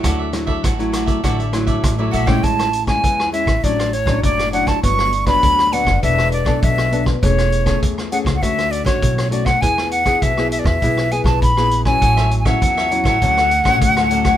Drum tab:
HH |x-x-xxxxxxxxx-x-|xxxxx-xxxxxxxxxx|x-xxx-x-x-x-x-x-|xxxxx-xxxxxxxxxx|
SD |r-r-r-r-r-r-r--r|-r-r-r-r-r-r-r-r|-r-r-r-r-r-r-r-r|-r-r-r-r-r-r-r-r|
BD |o--oo--oo--oo--o|o--oo--oo--oo--o|o--oo--oo--oo--o|o--oo--oo--oo--o|

HH |x-xxx-x-x-x-x-x-|xxxxx-xxxxxxxxxx|
SD |-r-r-r-r-r-r-r-r|-r-r-r-r-r-r-r-r|
BD |o--oo--oo--oo--o|o--oo--oo--oo--o|